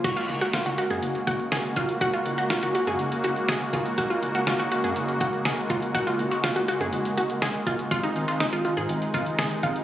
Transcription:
<<
  \new Staff \with { instrumentName = "Synth arpeggio sound" } { \time 4/4 \key ges \lydian \tempo 4 = 122 ges'16 f'8 ges'16 f'16 ges'16 ges'16 aes'8 r16 ges'8 aes'8 f'8 | ges'16 f'8 ges'16 f'16 ges'16 ges'16 aes'8 r16 ges'8 aes'8 f'8 | ges'16 f'8 ges'16 f'16 ges'16 ges'16 aes'8 r16 ges'8 aes'8 f'8 | ges'16 f'8 ges'16 f'16 ges'16 ges'16 aes'8 r16 ges'8 aes'8 f'8 |
f'16 ees'8 f'16 ees'16 f'16 f'16 aes'8 r16 f'8 aes'8 f'8 | }
  \new Staff \with { instrumentName = "Analog synth pad" } { \clef bass \time 4/4 \key ges \lydian <des aes bes ges'>1~ | <des aes bes ges'>1~ | <des aes bes ges'>1~ | <des aes bes ges'>1 |
<c ees ees'>1 | }
  \new Staff \with { instrumentName = "Analog synth bass" } { \clef bass \time 4/4 \key ges \lydian ges,,16 r16 ges,,16 r8 ges,,16 r16 ges,16 ges,,16 r16 ges,,16 r16 f,,16 r16 ges,,16 r16 | ges,,16 r16 ges,,16 r8 ges,,16 r16 ges,16 ges,,16 r16 ges,,16 r16 f,,16 r16 ges,,16 r16 | ges,,16 r16 ges,,16 r8 ges,,16 r16 ges,16 ges,,16 r16 ges,,16 r16 f,,16 r16 ges,,16 r16 | ges,,16 r16 ges,,16 r8 ges,,16 r16 ges,16 ges,,16 r16 ges,,16 r16 f,,16 r16 ges,,16 r16 |
aes,,16 r16 aes,,16 r8 aes,,16 r16 aes,16 aes,,16 r16 aes,,16 r16 ges,,16 r16 aes,,16 r16 | }
  \new DrumStaff \with { instrumentName = "Drums" } \drummode { \time 4/4 <cymc hh bd>16 hh16 hh16 hh16 <hh sn>16 hh16 hh16 hh16 hh16 hh16 <hh bd>16 hh16 <hh sn>16 hh16 <hh bd>16 hh16 | <hh bd>16 hh16 hh16 hh16 <hh sn>16 hh16 hh16 hh16 hh16 hh16 hh16 hh16 <hh sn>16 hh16 <hh bd>16 hh16 | <hh bd>16 hh16 hh16 hh16 <hh sn>16 hh16 hh16 hh16 hh16 hh16 <hh bd>16 hh16 <hh sn>16 hh16 <hh bd>16 hh16 | <hh bd>16 hh16 hh16 hh16 <hh sn>16 hh16 hh16 hh16 hh16 hh16 hh16 hh16 <hh sn>16 hh16 <hh bd>16 hh16 |
<hh bd>16 hh16 hh16 hh16 <hh sn>16 hh16 hh16 hh16 hh16 hh16 <hh bd>16 hh16 <hh sn>16 hh16 <hh bd>16 hh16 | }
>>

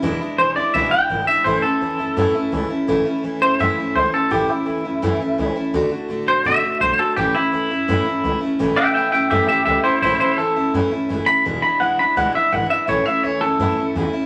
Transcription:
<<
  \new Staff \with { instrumentName = "Clean electric guitar" } { \time 4/4 \key a \major \tempo 4 = 168 r4 c''8 d''8 e''8 g''4 e''8 | c''8 a'2. r8 | r4. c''8 e''4 c''8 a'8 | g'8 e'2. r8 |
r4. c''8 e''4 c''8 a'8 | g'8 e'2. r8 | r8 <e'' g''>8 <e'' g''>8 <e'' g''>8 <g' e''>8 <g' e''>8 <g' e''>8 <e' c''>8 | <e' c''>8 <e' c''>8 a'4 r4. b''8 |
r8 b''8 fis''8 b''8 fis''8 e''8 fis''8 e''8 | cis''8 e''8 cis''8 a'2 r8 | }
  \new Staff \with { instrumentName = "Steel-string acoustic guitar" } { \time 4/4 \key a \major <e, b, e gis d' e'>8 <e gis d' e'>8 <e gis d' e'>8 <e gis d' e'>8 <e, b, e gis d' e'>8 <e gis d' e'>8 <e gis d' e'>8 <e gis d' e'>8 | <a, e a cis' e'>8 <a cis' e'>8 <e a cis' e'>8 <a cis' e'>8 <a, e a cis' e'>8 <a cis' e'>8 <e a cis' e'>8 <a cis' e'>8 | <a, e a cis' e'>8 <a cis' e'>8 <e a cis' e'>8 <a cis' e'>8 <a, e a cis' e'>8 <a cis' e'>8 <e a cis' e'>8 <a cis' e'>8 | <a, e a cis' e'>8 <a cis' e'>8 <e a cis' e'>8 <a cis' e'>8 <a, e a cis' e'>8 <a cis' e'>8 <e a cis' e'>8 <a cis' e'>8 |
<d a d' fis'>8 <a d' fis'>8 <d a d' fis'>8 <a d' fis'>8 <d a d' fis'>8 <a d' fis'>8 <d a d' fis'>8 <a d' fis'>8 | <a, e a cis' e'>8 <a cis' e'>8 <e a cis' e'>8 <a cis' e'>8 <a, e a cis' e'>8 <a cis' e'>8 <e a cis' e'>8 <a cis' e'>8 | <a, e a cis' e'>8 <a cis' e'>8 <e a cis' e'>8 <a cis' e'>8 <a, e a cis' e'>8 <a cis' e'>8 <e a cis' e'>8 <a cis' e'>8 | <a, e a cis' e'>8 <a cis' e'>8 <e a cis' e'>8 <a cis' e'>8 <a, e a cis' e'>8 <a cis' e'>8 <e a cis' e'>8 <a cis' e'>8 |
<e, b, e gis d' e'>8 <e gis d' e'>8 <e gis d' e'>8 <e gis d' e'>8 <e, b, e gis d' e'>8 <e gis d' e'>8 <e gis d' e'>8 <e gis d' e'>8 | <a, e a cis' e'>8 <a cis' e'>8 <e a cis' e'>8 <a cis' e'>8 <a, e a cis' e'>8 <a cis' e'>8 <e a cis' e'>8 <a cis' e'>8 | }
  \new Staff \with { instrumentName = "Upright bass" } { \clef bass \time 4/4 \key a \major e,,8 r8 b,,8 d,8 cis,8 r8 gis,,8 r8 | a,,8 r8 e,8 fis,8 fis,8 r8 cis,8 r8 | a,,8 r8 e,8 fis,8 fis,8 r8 cis,8 r8 | a,,8 r8 e,8 fis,8 fis,8 r8 cis,8 r8 |
d,8 r8 a,8 b,8 b,8 r8 b,,8 r8 | a,,8 r8 e,8 fis,8 fis,8 r8 cis,8 r8 | a,,8 r8 e,8 fis,8 fis,8 r8 cis,8 r8 | a,,8 r8 e,8 fis,8 fis,8 r8 fis,,8 r8 |
e,,8 r8 b,,8 d,8 cis,8 r8 gis,,8 r8 | a,,8 r8 e,8 fis,8 fis,8 r8 e,8 r8 | }
>>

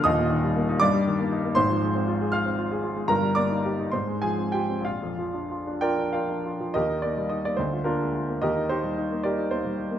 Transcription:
<<
  \new Staff \with { instrumentName = "Grand piano" } { \time 6/8 \key ees \major \tempo 4. = 74 <ees'' ees'''>4. <d'' d'''>4. | <c'' c'''>4. <f'' f'''>4 r8 | <bes' bes''>8 <d'' d'''>4 <c'' c'''>8 <aes' aes''>8 <g' g''>8 | <f' f''>4. <bes' d'' g''>8 <bes' d'' f''>4 |
<g' bes' ees''>8 d''8 ees''16 d''16 c''8 <d' f' bes'>4 | <g' bes' ees''>8 <ees' g' c''>4 <g' bes' d''>8 c''4 | }
  \new Staff \with { instrumentName = "Grand piano" } { \time 6/8 \key ees \major <ees,, ees,>16 bes,16 ees16 g16 bes16 ees'16 g,16 g16 ees16 bes16 ees'16 bes16 | <aes,, aes,>16 f16 aes16 c'16 f'16 aes'16 f'16 c'16 f'16 aes'16 f'16 aes16 | <g,, g,>16 g16 bes16 ees'16 g'16 ees'16 aes,16 aes16 f16 c'16 f'16 c'16 | bes,,16 f,16 f16 d'16 f'16 d'16 f'16 d'16 f'16 d'16 f'16 f16 |
ees,16 ees'16 bes16 g16 ees'16 bes16 d,16 f'16 bes16 aes16 f'16 bes16 | ees,16 ees'16 bes16 g16 ees'16 bes8 ees'16 bes16 g16 ees'16 bes16 | }
>>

